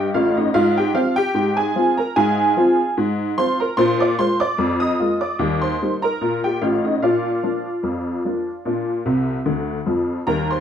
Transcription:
Already playing: G4 D#5
0.14 A1 A2 F4 F5
0.37 D#4 D#5
0.54 G#2 F4 F5
0.78 G4 G5
0.94 F3 C4 F4 F5
1.16 G4 G5
1.34 G#2
1.57 G#4 G#5
1.76 F3 C4 F4
1.97 A#4 A#5
2.16 G#2 G#4 F5 G#5
2.57 F3 C4 F4
2.98 G#2
3.38 F3 C4 F4 C5 C6
3.60 A#4 A#5
3.77 A#2 D4 C5 C6
4.00 D5 D6
4.19 G#3 A#3 F4 C5 C6
4.40 D5 D6
4.58 F2
4.80 D#5 D#6
4.99 G#3 A#3 F4
5.21 D5 D6
5.39 D#2 G3
5.61 C5 C6
5.82 G3 A#3 D#4
6.02 A#4 A#5
6.21 A#2
6.44 G4 G5
6.61 A1 A2 F4 F5
6.84 D#4 D#5
7.02 A#2 D4 F4 D5 F5
7.43 F3 A#3 D4
7.83 F2
8.25 F3 A#3 D4
8.65 A#2 D4
9.06 C2 C3
9.46 D2 D3
9.86 F2 F3
10.27 D#2 G3 A#4 A#5
10.51 C5 C6

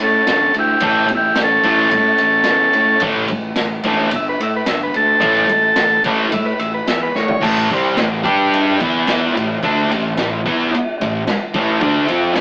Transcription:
0.00 A2 C#4 A4
0.27 G1 C#4 A4, snare, ride
0.54 D2, ride
0.59 E4 G4
0.80 A1 A2 E3 A3, kick, ride
0.87 E4 G4
1.08 A1, ride
1.15 E4 G4
1.36 A1, snare, ride
1.43 C#4 A4
1.63 A1 A2 E3 A3, ride
1.91 A2, ride
2.18 A1, ride
2.44 snare, ride
2.49 E2
2.73 A2, ride
3.00 A1 A2 E3 A3, kick, ride
3.28 ride
3.32 A1
3.56 A1, snare, ride
3.83 E1 A2 E3 A3, ride
4.11 G1, ride
4.16 E5
4.29 B4
4.40 A2 E5, ride
4.56 B4
4.66 G1 E5, snare, ride
4.83 B4
4.94 D2 A4, ride
5.20 A1 A2 E3 A3, kick, ride
5.49 A1, ride
5.76 A1, snare, ride
6.04 A1 A2 E3 A3, ride
6.31 A2 E5, ride
6.45 B4
6.59 A1 E5, ride
6.74 B4
6.87 E2 E5, snare, ride
7.03 B4
7.15 A2 C#5, snare
7.28 floor tom
7.42 A1 A2 E3 A3, kick, crash
7.70 C2 C3 G3 C4, kick, ride
7.97 A1 A2 E3, snare, ride
8.23 G2 G3 D4 G4, kick, ride
8.54 ride
8.80 E2 E3 B3 E4, kick, ride
9.07 snare, ride
9.34 A1 A2 E3, ride
9.63 D2 D3 A3 D4, kick, ride
9.90 A1 A2 E3, ride
10.17 A1 A2 E3, snare, ride
10.46 E2 E3 B3 E4, kick, ride
10.72 muted distorted electric guitar stroke, muted fingered electric bass stroke, ride
11.00 A1 A2 E3, ride
11.27 muted fingered electric bass stroke, muted distorted electric guitar stroke, snare, ride
11.54 A1 A2 E3 A3, kick, ride
11.81 D2 D3 A3 D4, kick, ride
12.08 F2 F3 C4 F4, ride
12.35 D3 A3, snare, ride

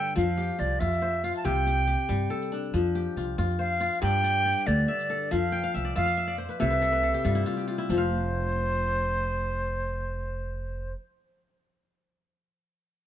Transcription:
Already playing: G2 D3 A4 D5 E5 G5
0.07 shaker
0.16 F2 F3 F5, shaker
0.28 shaker
0.38 G4, shaker
0.49 shaker
0.59 C2 F4 D5, shaker
0.79 F2 F4 E5
0.92 shaker
1.02 C5
1.24 F4 F5
1.35 A5, shaker
1.45 C2 C3 G4 G5
1.56 shaker
1.67 G4, shaker
1.77 shaker
1.87 G4
1.99 shaker
2.09 G2 G3, shaker
2.30 A4
2.42 shaker
2.52 D4
2.63 shaker
2.74 F2 F3, shaker
2.85 shaker
2.95 G4, shaker
3.16 C2 F4, shaker
3.38 F2 F4
3.49 shaker
3.59 C5 F5
3.80 F4
3.93 shaker
4.02 G2 D5 G5
4.14 shaker
4.24 D5, shaker
4.35 shaker
4.46 D5
4.56 shaker
4.66 D2 D3 D5, shaker
4.88 E5
4.99 shaker
5.10 A4
5.21 shaker
5.31 F2 F3 F5, shaker
5.52 G5
5.64 F5
5.74 C2 E5, shaker
5.85 D5, shaker
5.96 F2 F4 E5 F5
6.06 F5, shaker
6.17 E5
6.27 D5
6.38 C5
6.49 B4, shaker
6.59 C2 C3 A4 E5
6.70 B4
6.82 A4, shaker
6.92 B4, shaker
7.03 A4, shaker
7.14 G4
7.25 G2 G3 F4, shaker
7.35 E4
7.46 F4
7.57 G4, shaker
7.68 F4, shaker
7.78 E4
7.89 F1 F3 C5, shaker
7.94 F4 F5

